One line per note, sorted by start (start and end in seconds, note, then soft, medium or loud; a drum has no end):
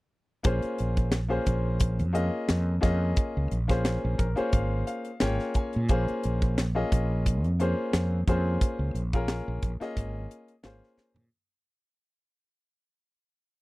0.43 0.61 A#1 medium
0.43 1.15 A#3 medium
0.43 1.16 C#4 medium
0.43 1.16 F4 medium
0.43 1.16 G#4 medium
0.43 1.16 C5 medium
0.43 kick loud
0.43 closed hi-hat medium
0.62 muted fretless electric bass stroke soft
0.62 closed hi-hat soft
0.78 1.38 A#1 medium
0.78 closed hi-hat medium
0.97 kick medium
0.97 closed hi-hat soft
1.12 snare loud
1.12 closed hi-hat medium
1.28 2.01 A#3 medium
1.28 2.01 C#4 medium
1.28 2.01 F4 medium
1.28 2.02 G#4 medium
1.28 2.02 C5 medium
1.46 2.01 A#1 medium
1.46 kick medium
1.46 closed hi-hat medium
1.80 kick medium
1.80 closed hi-hat medium
1.99 2.29 F2 medium
1.99 closed hi-hat soft
2.13 2.72 A#3 medium
2.13 2.72 C#4 medium
2.13 2.72 F4 medium
2.13 2.72 G#4 medium
2.13 2.73 D#5 medium
2.13 closed hi-hat medium
2.49 2.78 F2 medium
2.49 snare loud
2.49 closed hi-hat medium
2.81 3.12 F2 medium
2.81 3.53 A#3 medium
2.81 3.53 C#4 medium
2.81 3.54 F4 medium
2.81 3.54 G#4 medium
2.81 3.54 D#5 medium
2.81 kick medium
2.81 snare soft
2.81 closed hi-hat medium
3.16 kick loud
3.16 closed hi-hat medium
3.37 3.50 C#2 medium
3.51 3.96 A#1 medium
3.51 closed hi-hat medium
3.68 4.25 A#3 medium
3.68 4.25 C#4 medium
3.68 4.25 F4 medium
3.68 4.26 G#4 medium
3.68 4.26 C5 medium
3.68 kick medium
3.68 snare soft
3.68 closed hi-hat soft
3.85 snare loud
3.85 closed hi-hat medium
4.04 4.18 A#1 medium
4.18 4.35 A#1 medium
4.18 4.36 A#4 medium
4.18 kick medium
4.18 closed hi-hat medium
4.36 5.08 A#3 medium
4.36 5.08 C#4 medium
4.36 5.08 F4 medium
4.36 5.08 G#4 medium
4.36 5.09 C5 medium
4.36 4.52 C#5 medium
4.36 closed hi-hat soft
4.53 4.82 G#1 medium
4.53 4.85 F5 medium
4.53 kick medium
4.53 closed hi-hat medium
4.87 5.19 F5 medium
4.87 closed hi-hat medium
5.05 closed hi-hat soft
5.20 5.38 G#1 medium
5.20 5.79 A#3 medium
5.20 5.79 C#4 medium
5.20 5.79 F4 medium
5.20 5.79 G#4 medium
5.20 5.79 C#5 medium
5.20 5.53 G5 medium
5.20 snare loud
5.20 closed hi-hat medium
5.39 snare soft
5.54 5.87 G#5 medium
5.54 muted fretless electric bass stroke soft
5.54 kick medium
5.54 closed hi-hat medium
5.73 5.89 A#2 medium
5.73 closed hi-hat soft
5.89 6.05 A#1 loud
5.89 6.61 A#3 medium
5.89 6.61 C#4 medium
5.89 6.61 F4 medium
5.89 6.61 G#4 medium
5.89 6.62 C5 medium
5.89 kick medium
5.89 closed hi-hat medium
6.08 muted fretless electric bass stroke soft
6.08 closed hi-hat soft
6.23 6.83 A#1 medium
6.23 closed hi-hat medium
6.42 kick medium
6.42 closed hi-hat soft
6.58 snare loud
6.58 closed hi-hat medium
6.75 7.46 A#3 medium
6.75 7.46 C#4 medium
6.75 7.46 F4 medium
6.75 7.46 G#4 medium
6.75 7.47 D#5 medium
6.92 7.44 A#1 medium
6.92 kick medium
6.92 closed hi-hat medium
7.26 kick medium
7.26 closed hi-hat medium
7.44 7.73 F2 medium
7.44 closed hi-hat soft
7.59 8.17 A#3 medium
7.59 8.17 C#4 medium
7.59 8.18 F4 medium
7.59 8.18 G#4 medium
7.59 8.18 C5 medium
7.59 closed hi-hat medium
7.93 8.23 F2 medium
7.93 snare loud
7.93 closed hi-hat medium
8.27 8.56 F2 medium
8.27 8.99 A#3 medium
8.27 8.99 C#4 medium
8.27 8.99 F4 medium
8.27 8.99 G#4 medium
8.27 8.99 C5 medium
8.27 kick medium
8.27 closed hi-hat medium
8.61 kick loud
8.61 closed hi-hat medium
8.79 8.93 C#2 medium
8.95 9.40 A#1 medium
8.95 closed hi-hat medium
9.13 9.69 A#3 medium
9.13 9.70 C#4 medium
9.13 9.70 F4 medium
9.13 9.70 G#4 medium
9.13 9.70 A#4 medium
9.13 kick medium
9.13 closed hi-hat soft
9.28 snare loud
9.28 closed hi-hat medium
9.48 9.61 A#1 medium
9.62 9.79 A#1 medium
9.62 kick medium
9.62 closed hi-hat medium
9.80 10.51 A#3 medium
9.80 10.52 C#4 medium
9.80 10.52 F4 medium
9.80 10.52 G#4 medium
9.80 10.52 D#5 medium
9.80 snare soft
9.80 closed hi-hat soft
9.97 10.26 G#1 medium
9.97 kick medium
9.97 closed hi-hat medium
10.31 closed hi-hat medium
10.48 closed hi-hat soft
10.63 10.80 G#1 medium
10.63 11.21 A#3 medium
10.63 11.22 C#4 medium
10.63 11.22 F4 medium
10.63 11.23 G#4 medium
10.63 11.22 C5 medium
10.63 snare loud
10.63 closed hi-hat medium
10.83 snare soft
10.97 muted fretless electric bass stroke soft
10.97 snare medium
11.14 11.29 A#2 medium
11.14 floor tom medium